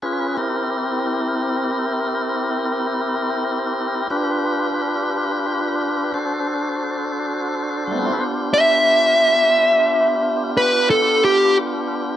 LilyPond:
<<
  \new Staff \with { instrumentName = "Lead electric guitar" } { \time 12/8 \key g \mixolydian \tempo 4. = 59 r1. | r1. | r8 e''2. b'8 a'8 g'8 r4 | }
  \new Staff \with { instrumentName = "Tonewheel organ" } { \time 12/8 \key g \mixolydian << { <cis' f' aes' b'>8 <c' e' g' bes'>1~ <c' e' g' bes'>4. | <d' f' g' b'>2. <d' fis' a' c''>2. | <b d' f' g'>1. | } \\ { r1. | r1. | <g a b c' d' e' f' g' a' b' c''>8 r1 r4. | } >> }
>>